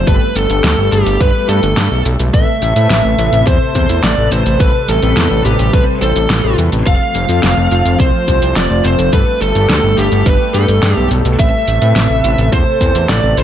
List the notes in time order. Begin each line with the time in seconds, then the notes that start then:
0.07 G1 G2 G3 A3 B3 G4 A4 B4, kick, closed hi-hat, shaker
0.36 G1 A4, closed hi-hat, shaker
0.50 G1 G2 B3 G4 A4, closed hi-hat, shaker
0.64 D2, snare, closed hi-hat, shaker
0.78 G1
0.92 G1 G2 B3 G4 A4, closed hi-hat, shaker
1.06 G1, closed hi-hat, shaker
1.20 G1 G2 B3 G4 B4, kick, closed hi-hat, shaker
1.49 G2 B3 G4 A4 B4, closed hi-hat, shaker
1.63 G1, closed hi-hat, shaker
1.77 G2, snare, closed hi-hat, shaker
1.91 B1 G2 B3 G4 A4
2.05 B1, closed hi-hat, shaker
2.20 B1, closed hi-hat, shaker
2.34 A1 A2 C3 C4 A4 B4 E5, kick, closed hi-hat, shaker
2.62 A1, closed hi-hat, shaker
2.76 A2 C4 A4 B4, closed hi-hat, shaker
2.90 A1, snare, closed hi-hat, shaker
3.05 A1
3.19 A1 A2 C4 A4 B4, closed hi-hat, shaker
3.33 A1, closed hi-hat, shaker
3.47 E2 A2 C4 A4 C5, kick, closed hi-hat, shaker
3.75 E2 A2 C4 A4 C5, kick, closed hi-hat, shaker
3.89 E2, closed hi-hat, shaker
4.03 A1 D5, snare, closed hi-hat, shaker
4.18 A1 A2 C4 A4 B4
4.32 A1 C5, closed hi-hat, shaker
4.46 A1, closed hi-hat, shaker
4.60 A1 A2 G3 C4 A4 B4, kick, closed hi-hat, shaker
4.88 A1 A4, closed hi-hat, shaker
5.03 A1 A2 C4 A4 B4, closed hi-hat, shaker
5.17 E2, snare, closed hi-hat, shaker
5.31 A1
5.45 A1 A2 C4 G4 A4 B4, closed hi-hat, shaker
5.59 A1, closed hi-hat, shaker
5.73 A1 A2 C4 A4 B4 C5, kick, closed hi-hat, shaker
6.02 A1 A2 C4 A4 C5, closed hi-hat, shaker
6.16 A1, closed hi-hat, shaker
6.30 A1, snare, closed hi-hat, shaker
6.44 A1 A2 C4 A4 B4
6.58 E2, closed hi-hat, shaker
6.72 A1, closed hi-hat, shaker
6.86 F1 F3 A3 C4 F4 A4 F5, kick, closed hi-hat, shaker
7.15 F1, closed hi-hat, shaker
7.29 F2 F3 C4 F4 A4, closed hi-hat, shaker
7.43 F1, snare, closed hi-hat, shaker
7.57 F1
7.71 F1 F3 C4 F4 A4, closed hi-hat, shaker
7.85 F1, closed hi-hat, shaker
8.00 C2 F3 C4 F4 C5, kick, closed hi-hat, shaker
8.28 C2 F3 C4 F4 C5, kick, closed hi-hat, shaker
8.42 C2, closed hi-hat, shaker
8.56 F1 D5, snare, closed hi-hat, shaker
8.70 F1 F3 C4 F4 A4
8.84 F1 C5, closed hi-hat, shaker
8.99 F1, closed hi-hat, shaker
9.13 G1 G2 G3 B3 G4 A4 B4, kick, closed hi-hat, shaker
9.41 G1 A4, closed hi-hat, shaker
9.55 G1 G2 B3 G4 A4, closed hi-hat, shaker
9.69 D2, snare, closed hi-hat, shaker
9.84 G1
9.98 G1 G2 B3 G4 A4, closed hi-hat, shaker
10.12 G1, closed hi-hat, shaker
10.26 G1 G2 B3 G4 B4, kick, closed hi-hat, shaker
10.54 G2 B3 G4 A4 B4, closed hi-hat, shaker
10.69 G1, closed hi-hat, shaker
10.83 G2, snare, closed hi-hat, shaker
10.95 B1 G2 B3 G4 A4
11.11 B1, closed hi-hat, shaker
11.25 B1, closed hi-hat, shaker
11.39 A1 A2 C3 C4 A4 B4 E5, kick, closed hi-hat, shaker
11.68 A1, closed hi-hat, shaker
11.82 A2 C4 A4 B4, closed hi-hat, shaker
11.96 A1, snare, closed hi-hat, shaker
12.10 A1
12.24 A1 A2 C4 A4 B4, closed hi-hat, shaker
12.38 A1, closed hi-hat, shaker
12.52 E2 A2 C4 A4 C5, kick, closed hi-hat, shaker
12.81 E2 A2 C4 A4 C5, kick, closed hi-hat, shaker
12.95 E2, closed hi-hat, shaker
13.09 A1 D5, snare, closed hi-hat, shaker
13.23 A1 A2 C4 A4 B4
13.37 A1 C5, closed hi-hat, shaker